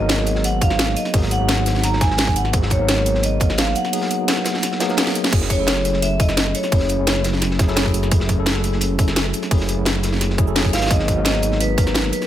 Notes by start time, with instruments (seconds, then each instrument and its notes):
Already playing: detuned saw bass G#1, tine electric piano G#4, vibraphone D#5
0.00 tine electric piano F#3 A#3 B3 D#4 A#4
0.09 snare, closed hi-hat
0.17 snare
0.26 closed hi-hat, shaker
0.35 snare
0.44 vibraphone F#5, closed hi-hat
0.61 detuned saw bass G#1, tine electric piano F#3 A#3 B3 D#4 A#4, vibraphone F5, kick, closed hi-hat, shaker
0.70 snare
0.79 snare, closed hi-hat
0.88 snare
0.96 vibraphone D#5, closed hi-hat, shaker
1.05 snare, closed hi-hat
1.13 detuned saw bass G#1, tine electric piano F#3 A#3 B3 D#4 G#4, kick, closed hi-hat, open hi-hat
1.22 snare
1.31 vibraphone F#5, closed hi-hat, shaker
1.39 detuned saw bass G#1, tine electric piano F#3 A#3 B3 D#4 F#4
1.48 snare, closed hi-hat
1.58 snare
1.66 snare, closed hi-hat, shaker
1.75 snare
1.84 vibraphone A#5, snare, closed hi-hat
1.93 snare
2.01 vibraphone G#5, kick, snare, closed hi-hat, shaker
2.10 snare
2.18 snare, closed hi-hat
2.27 kick, closed hi-hat
2.36 vibraphone F#5, closed hi-hat, shaker
2.45 snare
2.53 detuned saw bass G#1, tine electric piano F#3 A#3 B3 D#4 G#4, kick, closed hi-hat
2.62 snare
2.70 vibraphone C#5, kick, closed hi-hat, shaker
2.78 tine electric piano F#3 A#3 B3 D#4 A#4
2.89 snare, closed hi-hat
2.96 snare
3.06 closed hi-hat, shaker
3.15 snare
3.23 vibraphone D#5, closed hi-hat
3.40 detuned saw bass G#1, tine electric piano F#3 A#3 B3 D#4 A#4, kick, closed hi-hat, shaker
3.49 snare
3.58 vibraphone F5, snare, closed hi-hat
3.67 snare
3.75 vibraphone F#5, closed hi-hat, shaker
3.84 snare, closed hi-hat
3.92 tine electric piano F#3 A#3 B3 D#4 G#4, closed hi-hat, open hi-hat
4.01 snare
4.11 closed hi-hat, shaker
4.18 tine electric piano F#3 A#3 B3 D#4 F#4
4.28 snare, closed hi-hat
4.37 snare
4.45 snare, closed hi-hat, shaker
4.54 snare
4.62 snare, closed hi-hat
4.72 snare
4.79 tine electric piano F#3 A#3 B3 D#4 G#4, snare, closed hi-hat, shaker
4.89 tine electric piano F#3 A#3 B3 D#4 A#4, snare, shaker
4.97 tine electric piano F#3 A#3 B3 D#4 G#4, snare, closed hi-hat
5.07 snare, closed hi-hat
5.15 closed hi-hat, shaker
5.24 snare, shaker
5.32 detuned saw bass F#1, tine electric piano F#3 A3 C#4 E4 G#4, kick, closed hi-hat, crash
5.42 snare
5.50 vibraphone C#5, kick, closed hi-hat, shaker
5.57 tine electric piano F#3 A3 C#4 E4 A4
5.67 snare, closed hi-hat
5.76 snare
5.85 closed hi-hat, shaker
5.93 snare
6.02 vibraphone E5, closed hi-hat
6.19 detuned saw bass F#1, tine electric piano F#3 A3 C#4 E4 A4, vibraphone D#5, kick, closed hi-hat, shaker
6.29 snare, shaker
6.37 snare, closed hi-hat
6.45 snare
6.55 vibraphone C#5, closed hi-hat, shaker
6.63 snare, closed hi-hat, shaker
6.71 detuned saw bass F#1, tine electric piano F#3 A3 C#4 E4 G#4, kick, closed hi-hat, open hi-hat
6.80 snare
6.89 closed hi-hat, shaker
6.97 detuned saw bass F#1, tine electric piano F#3 A3 C#4 E4 F#4
7.07 snare, closed hi-hat
7.15 snare
7.24 snare, closed hi-hat, shaker
7.33 snare
7.41 snare, closed hi-hat
7.51 snare
7.59 tine electric piano F#3 A3 C#4 E4 G#4, kick, snare, closed hi-hat, shaker
7.67 tine electric piano F#3 A3 C#4 E4 A4, snare, shaker
7.76 tine electric piano F#3 A3 C#4 E4 G#4, snare, closed hi-hat
7.86 kick, closed hi-hat
7.94 closed hi-hat, shaker
8.03 snare, shaker
8.11 detuned saw bass F#1, tine electric piano F#3 A3 C#4 E4 G#4, kick, closed hi-hat
8.20 snare
8.29 kick, closed hi-hat, shaker
8.37 tine electric piano F#3 A3 C#4 E4 A4
8.46 snare, closed hi-hat
8.55 snare
8.64 closed hi-hat, shaker
8.72 snare
8.81 closed hi-hat
8.98 detuned saw bass F#1, tine electric piano F#3 A3 C#4 E4 A4, kick, closed hi-hat, shaker
9.08 snare, shaker
9.16 snare, closed hi-hat
9.25 snare
9.33 closed hi-hat, shaker
9.42 snare, closed hi-hat, shaker
9.50 detuned saw bass F#1, tine electric piano F#3 A3 C#4 E4 G#4, kick, closed hi-hat, open hi-hat
9.61 snare
9.69 closed hi-hat, shaker
9.76 detuned saw bass F#1, tine electric piano F#3 A3 C#4 E4 F#4
9.85 snare, closed hi-hat
9.95 snare
10.03 snare, closed hi-hat, shaker
10.12 snare
10.21 snare, closed hi-hat
10.30 snare
10.38 tine electric piano F#3 A3 C#4 E4 G#4, kick, closed hi-hat, shaker
10.46 tine electric piano F#3 A3 C#4 E4 A4, shaker
10.55 tine electric piano F#3 A#3 B3 D#4 G#4, snare, closed hi-hat
10.65 kick, closed hi-hat
10.73 detuned saw bass G#1, vibraphone F5, snare, closed hi-hat, shaker
10.77 snare, closed hi-hat
10.82 snare, closed hi-hat, shaker
10.86 tine electric piano F#3 A#3, snare, closed hi-hat
10.90 detuned saw bass G#1, tine electric piano B3 D#4 G#4, vibraphone D#5, kick, closed hi-hat
10.99 snare
11.08 kick, closed hi-hat, shaker
11.15 tine electric piano F#3 A#3 B3 D#4 A#4
11.25 vibraphone D#5, snare, closed hi-hat
11.34 snare
11.42 closed hi-hat, shaker
11.52 snare
11.60 vibraphone B4, closed hi-hat
11.77 detuned saw bass G#1, tine electric piano F#3 A#3 B3 D#4 A#4, kick, closed hi-hat, shaker
11.87 snare, shaker
11.94 snare, closed hi-hat
12.04 snare
12.12 vibraphone B4, closed hi-hat, shaker
12.22 snare, closed hi-hat, shaker